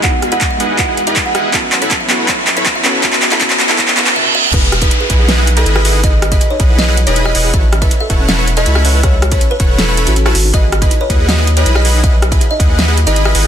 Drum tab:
CC |----------------|----------------|----------------|x---------------|
HH |x-xxx-x-x-xxx-x-|x-xxx-x-x-xxx-x-|x-xxx-x-x-xx----|x-xxx-x-x-xxx-o-|
CP |x---x---x---x---|x-x-x-x-x-x-x-x-|xxxxxxxxxxxx----|----------------|
SD |--r-----------r-|----------------|----------------|--r-----o----r--|
T1 |----------------|----------------|------------oo--|----------------|
T2 |----------------|----------------|---------------o|----------------|
BD |o---o---o---o---|o---o---o---o---|o---o---o-------|o--o--o---------|

CC |----------------|----------------|----------------|----------------|
HH |x-xxx-x-x-xxx-o-|x-xxx-x-x-xxx-o-|x-xxx-x-x-xxx-o-|x-xxx-x-x-xxx-o-|
CP |----------------|----------------|----------------|----------------|
SD |--r-----o----r--|--r-----o----r--|r-r-----o----r--|--r-----o----r--|
T1 |----------------|----------------|----------------|----------------|
T2 |----------------|----------------|----------------|----------------|
BD |o--o--o---------|o--o--o---------|o--o--o---------|o--o--o---------|

CC |----------------|
HH |x-xxx-x-x-xxx-o-|
CP |----------------|
SD |--r-----o----r--|
T1 |----------------|
T2 |----------------|
BD |o--o--o---------|